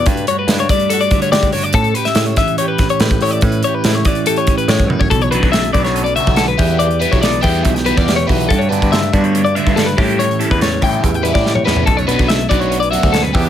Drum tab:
HH |xxx-xxxxxxxxxxox|xxxxxxxxx-xxxxox|xxx-xxxxxxxxxx--|xxxxxxxxxxxxxxox|
SD |----o-------o---|---oo-o---o-o---|----o-------o---|----o--o----o---|
T1 |----------------|----------------|--------------o-|----------------|
T2 |----------------|----------------|----------------|----------------|
FT |----------------|----------------|----------------|----------------|
BD |o-----o---o--o--|o-----o---o--o--|o-----o---o--o-o|o--o--o----o--o-|

HH |xxxxxxoxxxxxxxox|xxxxxxxxxxxxxxox|xxxxxxoxxxxx----|xxxxxxxxxxxxxxox|
SD |----o----o--o---|----o-------o---|----o------oo-o-|----o-------o---|
T1 |----------------|----------------|----------------|----------------|
T2 |----------------|----------------|-------------o--|----------------|
FT |----------------|----------------|---------------o|----------------|
BD |---o--o-o--o--o-|o--o--o----o--o-|---o--o-o--o----|o--o--o----o--o-|